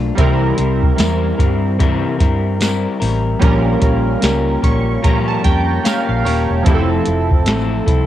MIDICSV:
0, 0, Header, 1, 5, 480
1, 0, Start_track
1, 0, Tempo, 810592
1, 106, Time_signature, 4, 2, 24, 8
1, 4775, End_track
2, 0, Start_track
2, 0, Title_t, "Synth keys"
2, 0, Program_c, 0, 88
2, 0, Control_c, 0, 64, 127
2, 0, Note_on_c, 0, 53, 71
2, 0, Note_on_c, 0, 58, 66
2, 0, Note_on_c, 0, 62, 61
2, 0, Note_on_c, 0, 69, 76
2, 73, Note_off_c, 0, 53, 0
2, 78, Note_off_c, 0, 58, 0
2, 83, Note_off_c, 0, 62, 0
2, 88, Note_off_c, 0, 69, 0
2, 89, Note_on_c, 0, 55, 71
2, 101, Note_on_c, 0, 60, 66
2, 109, Note_on_c, 0, 64, 67
2, 112, Control_c, 0, 64, 0
2, 118, Note_on_c, 0, 70, 82
2, 212, Control_c, 0, 64, 127
2, 1993, Note_off_c, 0, 55, 0
2, 2000, Note_off_c, 0, 60, 0
2, 2004, Note_off_c, 0, 64, 0
2, 2008, Note_off_c, 0, 70, 0
2, 2009, Note_on_c, 0, 55, 73
2, 2019, Note_on_c, 0, 61, 67
2, 2029, Note_on_c, 0, 65, 61
2, 2034, Control_c, 0, 64, 0
2, 2039, Note_on_c, 0, 70, 82
2, 2131, Control_c, 0, 64, 127
2, 2746, Note_on_c, 0, 85, 68
2, 2969, Note_off_c, 0, 85, 0
2, 2982, Note_on_c, 0, 82, 69
2, 3118, Note_off_c, 0, 82, 0
2, 3125, Note_on_c, 0, 81, 68
2, 3216, Note_off_c, 0, 81, 0
2, 3222, Note_on_c, 0, 79, 77
2, 3447, Note_off_c, 0, 79, 0
2, 3462, Note_on_c, 0, 77, 70
2, 3598, Note_off_c, 0, 77, 0
2, 3605, Note_on_c, 0, 77, 66
2, 3696, Note_off_c, 0, 77, 0
2, 3701, Note_on_c, 0, 73, 66
2, 3913, Note_off_c, 0, 55, 0
2, 3918, Note_off_c, 0, 61, 0
2, 3924, Note_off_c, 0, 65, 0
2, 3925, Note_on_c, 0, 53, 69
2, 3926, Note_off_c, 0, 73, 0
2, 3929, Note_off_c, 0, 70, 0
2, 3936, Note_on_c, 0, 60, 63
2, 3945, Note_on_c, 0, 64, 66
2, 3952, Control_c, 0, 64, 0
2, 3956, Note_on_c, 0, 67, 60
2, 3995, Note_on_c, 0, 69, 77
2, 3997, Note_off_c, 0, 67, 0
2, 4048, Control_c, 0, 64, 127
2, 4775, Note_off_c, 0, 53, 0
2, 4775, Note_off_c, 0, 60, 0
2, 4775, Note_off_c, 0, 64, 0
2, 4775, Note_off_c, 0, 69, 0
2, 4775, End_track
3, 0, Start_track
3, 0, Title_t, "Clean electric guitar"
3, 0, Program_c, 1, 27
3, 0, Note_on_c, 1, 57, 55
3, 0, Note_on_c, 1, 62, 57
3, 0, Note_on_c, 1, 65, 66
3, 97, Note_on_c, 1, 48, 83
3, 101, Note_off_c, 1, 65, 0
3, 102, Note_off_c, 1, 57, 0
3, 103, Note_on_c, 1, 52, 84
3, 104, Note_off_c, 1, 62, 0
3, 105, Note_on_c, 1, 55, 94
3, 106, Note_on_c, 1, 60, 97
3, 108, Note_on_c, 1, 64, 96
3, 109, Note_on_c, 1, 70, 101
3, 328, Note_off_c, 1, 70, 0
3, 334, Note_off_c, 1, 64, 0
3, 336, Note_on_c, 1, 70, 61
3, 341, Note_off_c, 1, 48, 0
3, 341, Note_off_c, 1, 60, 0
3, 341, Note_on_c, 1, 64, 56
3, 345, Note_off_c, 1, 52, 0
3, 345, Note_off_c, 1, 55, 0
3, 348, Note_on_c, 1, 60, 50
3, 354, Note_on_c, 1, 55, 48
3, 563, Note_off_c, 1, 55, 0
3, 570, Note_off_c, 1, 60, 0
3, 570, Note_on_c, 1, 55, 68
3, 575, Note_off_c, 1, 64, 0
3, 577, Note_on_c, 1, 60, 70
3, 579, Note_off_c, 1, 70, 0
3, 582, Note_on_c, 1, 64, 66
3, 586, Note_on_c, 1, 70, 75
3, 808, Note_off_c, 1, 70, 0
3, 815, Note_off_c, 1, 64, 0
3, 816, Note_on_c, 1, 70, 65
3, 818, Note_off_c, 1, 55, 0
3, 818, Note_off_c, 1, 60, 0
3, 822, Note_on_c, 1, 64, 59
3, 825, Note_on_c, 1, 60, 57
3, 831, Note_on_c, 1, 55, 53
3, 1055, Note_off_c, 1, 55, 0
3, 1055, Note_on_c, 1, 48, 75
3, 1056, Note_off_c, 1, 60, 0
3, 1057, Note_off_c, 1, 64, 0
3, 1059, Note_on_c, 1, 52, 83
3, 1061, Note_off_c, 1, 70, 0
3, 1062, Note_on_c, 1, 55, 98
3, 1063, Note_on_c, 1, 60, 90
3, 1064, Note_on_c, 1, 64, 91
3, 1067, Note_on_c, 1, 70, 93
3, 1289, Note_off_c, 1, 70, 0
3, 1296, Note_on_c, 1, 70, 63
3, 1297, Note_off_c, 1, 64, 0
3, 1301, Note_off_c, 1, 48, 0
3, 1303, Note_off_c, 1, 52, 0
3, 1303, Note_off_c, 1, 60, 0
3, 1304, Note_off_c, 1, 55, 0
3, 1304, Note_on_c, 1, 64, 55
3, 1310, Note_on_c, 1, 60, 51
3, 1317, Note_on_c, 1, 55, 53
3, 1534, Note_off_c, 1, 55, 0
3, 1538, Note_off_c, 1, 60, 0
3, 1541, Note_off_c, 1, 70, 0
3, 1541, Note_on_c, 1, 55, 62
3, 1545, Note_off_c, 1, 64, 0
3, 1546, Note_on_c, 1, 60, 70
3, 1551, Note_on_c, 1, 64, 73
3, 1557, Note_on_c, 1, 70, 74
3, 1768, Note_off_c, 1, 70, 0
3, 1774, Note_off_c, 1, 64, 0
3, 1775, Note_on_c, 1, 70, 61
3, 1778, Note_off_c, 1, 60, 0
3, 1782, Note_on_c, 1, 64, 56
3, 1784, Note_off_c, 1, 55, 0
3, 1786, Note_on_c, 1, 60, 54
3, 1791, Note_on_c, 1, 55, 52
3, 2011, Note_on_c, 1, 46, 78
3, 2014, Note_on_c, 1, 53, 93
3, 2016, Note_off_c, 1, 55, 0
3, 2017, Note_off_c, 1, 60, 0
3, 2018, Note_off_c, 1, 70, 0
3, 2019, Note_on_c, 1, 58, 86
3, 2019, Note_on_c, 1, 61, 82
3, 2021, Note_off_c, 1, 64, 0
3, 2023, Note_on_c, 1, 67, 84
3, 2025, Note_on_c, 1, 70, 90
3, 2245, Note_off_c, 1, 70, 0
3, 2252, Note_off_c, 1, 67, 0
3, 2252, Note_on_c, 1, 70, 58
3, 2257, Note_off_c, 1, 61, 0
3, 2258, Note_off_c, 1, 46, 0
3, 2259, Note_on_c, 1, 67, 57
3, 2260, Note_off_c, 1, 53, 0
3, 2261, Note_off_c, 1, 58, 0
3, 2264, Note_on_c, 1, 61, 52
3, 2268, Note_on_c, 1, 58, 45
3, 2487, Note_off_c, 1, 58, 0
3, 2493, Note_off_c, 1, 61, 0
3, 2494, Note_on_c, 1, 58, 64
3, 2498, Note_off_c, 1, 67, 0
3, 2499, Note_off_c, 1, 70, 0
3, 2500, Note_on_c, 1, 61, 66
3, 2505, Note_on_c, 1, 67, 72
3, 2509, Note_on_c, 1, 70, 69
3, 2731, Note_off_c, 1, 70, 0
3, 2736, Note_off_c, 1, 67, 0
3, 2738, Note_on_c, 1, 70, 64
3, 2740, Note_off_c, 1, 58, 0
3, 2743, Note_off_c, 1, 61, 0
3, 2743, Note_on_c, 1, 67, 52
3, 2749, Note_on_c, 1, 61, 57
3, 2754, Note_on_c, 1, 58, 48
3, 2973, Note_off_c, 1, 58, 0
3, 2974, Note_on_c, 1, 46, 86
3, 2976, Note_off_c, 1, 61, 0
3, 2977, Note_off_c, 1, 67, 0
3, 2977, Note_on_c, 1, 53, 88
3, 2979, Note_off_c, 1, 70, 0
3, 2980, Note_on_c, 1, 58, 81
3, 2983, Note_on_c, 1, 61, 88
3, 2984, Note_on_c, 1, 67, 97
3, 2986, Note_on_c, 1, 70, 92
3, 3213, Note_off_c, 1, 70, 0
3, 3218, Note_off_c, 1, 67, 0
3, 3220, Note_off_c, 1, 46, 0
3, 3220, Note_on_c, 1, 70, 57
3, 3221, Note_off_c, 1, 53, 0
3, 3223, Note_off_c, 1, 58, 0
3, 3224, Note_off_c, 1, 61, 0
3, 3225, Note_on_c, 1, 67, 61
3, 3232, Note_on_c, 1, 61, 52
3, 3235, Note_on_c, 1, 58, 53
3, 3447, Note_off_c, 1, 58, 0
3, 3455, Note_on_c, 1, 58, 69
3, 3457, Note_off_c, 1, 61, 0
3, 3460, Note_off_c, 1, 67, 0
3, 3463, Note_off_c, 1, 70, 0
3, 3464, Note_on_c, 1, 61, 72
3, 3467, Note_on_c, 1, 67, 71
3, 3473, Note_on_c, 1, 70, 70
3, 3694, Note_off_c, 1, 70, 0
3, 3700, Note_off_c, 1, 58, 0
3, 3702, Note_off_c, 1, 67, 0
3, 3702, Note_on_c, 1, 70, 56
3, 3705, Note_off_c, 1, 61, 0
3, 3709, Note_on_c, 1, 67, 62
3, 3713, Note_on_c, 1, 61, 55
3, 3719, Note_on_c, 1, 58, 53
3, 3941, Note_on_c, 1, 53, 85
3, 3944, Note_off_c, 1, 58, 0
3, 3944, Note_off_c, 1, 70, 0
3, 3946, Note_off_c, 1, 61, 0
3, 3947, Note_off_c, 1, 67, 0
3, 3947, Note_on_c, 1, 57, 87
3, 3949, Note_on_c, 1, 60, 80
3, 3950, Note_on_c, 1, 64, 89
3, 3952, Note_on_c, 1, 69, 98
3, 4170, Note_off_c, 1, 69, 0
3, 4177, Note_on_c, 1, 69, 53
3, 4180, Note_off_c, 1, 64, 0
3, 4183, Note_off_c, 1, 53, 0
3, 4186, Note_off_c, 1, 57, 0
3, 4187, Note_off_c, 1, 60, 0
3, 4187, Note_on_c, 1, 64, 49
3, 4193, Note_on_c, 1, 60, 45
3, 4415, Note_off_c, 1, 60, 0
3, 4417, Note_on_c, 1, 57, 67
3, 4420, Note_off_c, 1, 64, 0
3, 4421, Note_off_c, 1, 69, 0
3, 4422, Note_on_c, 1, 60, 70
3, 4428, Note_on_c, 1, 64, 70
3, 4432, Note_on_c, 1, 69, 69
3, 4650, Note_off_c, 1, 69, 0
3, 4657, Note_on_c, 1, 69, 62
3, 4658, Note_off_c, 1, 64, 0
3, 4661, Note_off_c, 1, 57, 0
3, 4663, Note_off_c, 1, 60, 0
3, 4665, Note_on_c, 1, 64, 55
3, 4674, Note_on_c, 1, 60, 51
3, 4775, Note_off_c, 1, 60, 0
3, 4775, Note_off_c, 1, 64, 0
3, 4775, Note_off_c, 1, 69, 0
3, 4775, End_track
4, 0, Start_track
4, 0, Title_t, "Fingered electric bass"
4, 0, Program_c, 2, 33
4, 108, Note_on_c, 2, 36, 107
4, 299, Note_off_c, 2, 36, 0
4, 347, Note_on_c, 2, 36, 101
4, 539, Note_off_c, 2, 36, 0
4, 585, Note_on_c, 2, 40, 96
4, 777, Note_off_c, 2, 40, 0
4, 824, Note_on_c, 2, 43, 79
4, 1209, Note_off_c, 2, 43, 0
4, 1306, Note_on_c, 2, 43, 85
4, 1690, Note_off_c, 2, 43, 0
4, 1787, Note_on_c, 2, 33, 94
4, 1979, Note_off_c, 2, 33, 0
4, 2028, Note_on_c, 2, 34, 108
4, 2219, Note_off_c, 2, 34, 0
4, 2262, Note_on_c, 2, 34, 97
4, 2455, Note_off_c, 2, 34, 0
4, 2504, Note_on_c, 2, 37, 96
4, 2697, Note_off_c, 2, 37, 0
4, 2747, Note_on_c, 2, 34, 86
4, 2938, Note_off_c, 2, 34, 0
4, 2990, Note_on_c, 2, 46, 100
4, 3180, Note_off_c, 2, 46, 0
4, 3228, Note_on_c, 2, 41, 91
4, 3419, Note_off_c, 2, 41, 0
4, 3605, Note_on_c, 2, 34, 89
4, 3684, Note_off_c, 2, 34, 0
4, 3703, Note_on_c, 2, 27, 90
4, 3819, Note_off_c, 2, 27, 0
4, 3850, Note_on_c, 2, 28, 91
4, 3927, Note_off_c, 2, 28, 0
4, 3946, Note_on_c, 2, 29, 106
4, 4138, Note_off_c, 2, 29, 0
4, 4189, Note_on_c, 2, 29, 92
4, 4426, Note_off_c, 2, 29, 0
4, 4426, Note_on_c, 2, 33, 100
4, 4617, Note_off_c, 2, 33, 0
4, 4664, Note_on_c, 2, 36, 96
4, 4775, Note_off_c, 2, 36, 0
4, 4775, End_track
5, 0, Start_track
5, 0, Title_t, "Drums"
5, 106, Note_on_c, 9, 36, 123
5, 106, Note_on_c, 9, 42, 104
5, 165, Note_off_c, 9, 36, 0
5, 165, Note_off_c, 9, 42, 0
5, 342, Note_on_c, 9, 42, 70
5, 401, Note_off_c, 9, 42, 0
5, 491, Note_on_c, 9, 36, 98
5, 550, Note_off_c, 9, 36, 0
5, 581, Note_on_c, 9, 42, 84
5, 584, Note_on_c, 9, 54, 69
5, 591, Note_on_c, 9, 38, 114
5, 640, Note_off_c, 9, 42, 0
5, 643, Note_off_c, 9, 54, 0
5, 650, Note_off_c, 9, 38, 0
5, 824, Note_on_c, 9, 36, 89
5, 828, Note_on_c, 9, 42, 74
5, 883, Note_off_c, 9, 36, 0
5, 887, Note_off_c, 9, 42, 0
5, 1067, Note_on_c, 9, 36, 88
5, 1067, Note_on_c, 9, 42, 78
5, 1126, Note_off_c, 9, 42, 0
5, 1127, Note_off_c, 9, 36, 0
5, 1305, Note_on_c, 9, 42, 59
5, 1306, Note_on_c, 9, 36, 87
5, 1312, Note_on_c, 9, 38, 32
5, 1365, Note_off_c, 9, 36, 0
5, 1365, Note_off_c, 9, 42, 0
5, 1371, Note_off_c, 9, 38, 0
5, 1544, Note_on_c, 9, 42, 84
5, 1550, Note_on_c, 9, 38, 92
5, 1553, Note_on_c, 9, 54, 82
5, 1603, Note_off_c, 9, 42, 0
5, 1609, Note_off_c, 9, 38, 0
5, 1612, Note_off_c, 9, 54, 0
5, 1787, Note_on_c, 9, 46, 55
5, 1846, Note_off_c, 9, 46, 0
5, 2024, Note_on_c, 9, 42, 107
5, 2026, Note_on_c, 9, 36, 126
5, 2084, Note_off_c, 9, 42, 0
5, 2085, Note_off_c, 9, 36, 0
5, 2260, Note_on_c, 9, 42, 71
5, 2262, Note_on_c, 9, 36, 81
5, 2319, Note_off_c, 9, 42, 0
5, 2321, Note_off_c, 9, 36, 0
5, 2501, Note_on_c, 9, 42, 82
5, 2506, Note_on_c, 9, 54, 68
5, 2510, Note_on_c, 9, 38, 111
5, 2560, Note_off_c, 9, 42, 0
5, 2566, Note_off_c, 9, 54, 0
5, 2569, Note_off_c, 9, 38, 0
5, 2744, Note_on_c, 9, 36, 86
5, 2747, Note_on_c, 9, 42, 77
5, 2803, Note_off_c, 9, 36, 0
5, 2806, Note_off_c, 9, 42, 0
5, 2987, Note_on_c, 9, 42, 80
5, 2988, Note_on_c, 9, 36, 86
5, 3046, Note_off_c, 9, 42, 0
5, 3047, Note_off_c, 9, 36, 0
5, 3224, Note_on_c, 9, 42, 60
5, 3226, Note_on_c, 9, 36, 94
5, 3231, Note_on_c, 9, 38, 34
5, 3283, Note_off_c, 9, 42, 0
5, 3285, Note_off_c, 9, 36, 0
5, 3290, Note_off_c, 9, 38, 0
5, 3465, Note_on_c, 9, 42, 83
5, 3470, Note_on_c, 9, 54, 79
5, 3472, Note_on_c, 9, 38, 93
5, 3525, Note_off_c, 9, 42, 0
5, 3529, Note_off_c, 9, 54, 0
5, 3531, Note_off_c, 9, 38, 0
5, 3710, Note_on_c, 9, 46, 55
5, 3769, Note_off_c, 9, 46, 0
5, 3945, Note_on_c, 9, 42, 108
5, 3946, Note_on_c, 9, 36, 123
5, 4004, Note_off_c, 9, 42, 0
5, 4005, Note_off_c, 9, 36, 0
5, 4178, Note_on_c, 9, 42, 72
5, 4237, Note_off_c, 9, 42, 0
5, 4330, Note_on_c, 9, 36, 92
5, 4389, Note_off_c, 9, 36, 0
5, 4418, Note_on_c, 9, 42, 88
5, 4426, Note_on_c, 9, 54, 69
5, 4428, Note_on_c, 9, 38, 110
5, 4478, Note_off_c, 9, 42, 0
5, 4485, Note_off_c, 9, 54, 0
5, 4487, Note_off_c, 9, 38, 0
5, 4663, Note_on_c, 9, 36, 89
5, 4666, Note_on_c, 9, 42, 75
5, 4722, Note_off_c, 9, 36, 0
5, 4725, Note_off_c, 9, 42, 0
5, 4775, End_track
0, 0, End_of_file